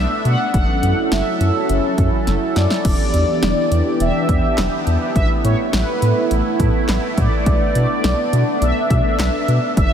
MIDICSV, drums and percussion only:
0, 0, Header, 1, 2, 480
1, 0, Start_track
1, 0, Tempo, 576923
1, 450, Time_signature, 4, 2, 24, 8
1, 8263, End_track
2, 0, Start_track
2, 0, Title_t, "Drums"
2, 210, Note_on_c, 9, 42, 64
2, 293, Note_off_c, 9, 42, 0
2, 450, Note_on_c, 9, 36, 109
2, 450, Note_on_c, 9, 42, 80
2, 533, Note_off_c, 9, 36, 0
2, 533, Note_off_c, 9, 42, 0
2, 691, Note_on_c, 9, 42, 77
2, 774, Note_off_c, 9, 42, 0
2, 929, Note_on_c, 9, 38, 114
2, 930, Note_on_c, 9, 42, 71
2, 1012, Note_off_c, 9, 38, 0
2, 1013, Note_off_c, 9, 42, 0
2, 1171, Note_on_c, 9, 42, 78
2, 1254, Note_off_c, 9, 42, 0
2, 1410, Note_on_c, 9, 42, 77
2, 1493, Note_off_c, 9, 42, 0
2, 1648, Note_on_c, 9, 36, 86
2, 1648, Note_on_c, 9, 42, 68
2, 1731, Note_off_c, 9, 36, 0
2, 1731, Note_off_c, 9, 42, 0
2, 1890, Note_on_c, 9, 38, 58
2, 1891, Note_on_c, 9, 42, 78
2, 1973, Note_off_c, 9, 38, 0
2, 1974, Note_off_c, 9, 42, 0
2, 2131, Note_on_c, 9, 38, 88
2, 2131, Note_on_c, 9, 42, 68
2, 2214, Note_off_c, 9, 38, 0
2, 2215, Note_off_c, 9, 42, 0
2, 2250, Note_on_c, 9, 38, 89
2, 2333, Note_off_c, 9, 38, 0
2, 2370, Note_on_c, 9, 42, 77
2, 2371, Note_on_c, 9, 36, 112
2, 2371, Note_on_c, 9, 49, 95
2, 2453, Note_off_c, 9, 42, 0
2, 2454, Note_off_c, 9, 36, 0
2, 2454, Note_off_c, 9, 49, 0
2, 2611, Note_on_c, 9, 42, 76
2, 2694, Note_off_c, 9, 42, 0
2, 2850, Note_on_c, 9, 38, 120
2, 2851, Note_on_c, 9, 42, 71
2, 2934, Note_off_c, 9, 38, 0
2, 2934, Note_off_c, 9, 42, 0
2, 3092, Note_on_c, 9, 42, 81
2, 3175, Note_off_c, 9, 42, 0
2, 3330, Note_on_c, 9, 42, 80
2, 3414, Note_off_c, 9, 42, 0
2, 3568, Note_on_c, 9, 36, 89
2, 3569, Note_on_c, 9, 42, 66
2, 3651, Note_off_c, 9, 36, 0
2, 3652, Note_off_c, 9, 42, 0
2, 3810, Note_on_c, 9, 38, 117
2, 3810, Note_on_c, 9, 39, 93
2, 3811, Note_on_c, 9, 42, 78
2, 3893, Note_off_c, 9, 38, 0
2, 3893, Note_off_c, 9, 39, 0
2, 3894, Note_off_c, 9, 42, 0
2, 4051, Note_on_c, 9, 42, 67
2, 4134, Note_off_c, 9, 42, 0
2, 4290, Note_on_c, 9, 36, 110
2, 4291, Note_on_c, 9, 42, 77
2, 4373, Note_off_c, 9, 36, 0
2, 4374, Note_off_c, 9, 42, 0
2, 4531, Note_on_c, 9, 42, 79
2, 4615, Note_off_c, 9, 42, 0
2, 4769, Note_on_c, 9, 38, 113
2, 4769, Note_on_c, 9, 42, 72
2, 4852, Note_off_c, 9, 38, 0
2, 4853, Note_off_c, 9, 42, 0
2, 5011, Note_on_c, 9, 42, 77
2, 5094, Note_off_c, 9, 42, 0
2, 5250, Note_on_c, 9, 42, 78
2, 5333, Note_off_c, 9, 42, 0
2, 5487, Note_on_c, 9, 36, 85
2, 5489, Note_on_c, 9, 42, 69
2, 5571, Note_off_c, 9, 36, 0
2, 5572, Note_off_c, 9, 42, 0
2, 5729, Note_on_c, 9, 38, 111
2, 5729, Note_on_c, 9, 39, 89
2, 5730, Note_on_c, 9, 42, 78
2, 5813, Note_off_c, 9, 38, 0
2, 5813, Note_off_c, 9, 39, 0
2, 5814, Note_off_c, 9, 42, 0
2, 5970, Note_on_c, 9, 36, 96
2, 5971, Note_on_c, 9, 42, 66
2, 6053, Note_off_c, 9, 36, 0
2, 6054, Note_off_c, 9, 42, 0
2, 6209, Note_on_c, 9, 42, 79
2, 6210, Note_on_c, 9, 36, 111
2, 6293, Note_off_c, 9, 36, 0
2, 6293, Note_off_c, 9, 42, 0
2, 6451, Note_on_c, 9, 42, 76
2, 6534, Note_off_c, 9, 42, 0
2, 6690, Note_on_c, 9, 38, 118
2, 6690, Note_on_c, 9, 42, 72
2, 6773, Note_off_c, 9, 38, 0
2, 6774, Note_off_c, 9, 42, 0
2, 6932, Note_on_c, 9, 42, 81
2, 7015, Note_off_c, 9, 42, 0
2, 7171, Note_on_c, 9, 42, 75
2, 7254, Note_off_c, 9, 42, 0
2, 7408, Note_on_c, 9, 36, 87
2, 7409, Note_on_c, 9, 42, 68
2, 7491, Note_off_c, 9, 36, 0
2, 7493, Note_off_c, 9, 42, 0
2, 7650, Note_on_c, 9, 38, 112
2, 7650, Note_on_c, 9, 39, 91
2, 7651, Note_on_c, 9, 42, 78
2, 7733, Note_off_c, 9, 38, 0
2, 7733, Note_off_c, 9, 39, 0
2, 7734, Note_off_c, 9, 42, 0
2, 7891, Note_on_c, 9, 42, 66
2, 7974, Note_off_c, 9, 42, 0
2, 8130, Note_on_c, 9, 36, 113
2, 8130, Note_on_c, 9, 42, 80
2, 8213, Note_off_c, 9, 36, 0
2, 8213, Note_off_c, 9, 42, 0
2, 8263, End_track
0, 0, End_of_file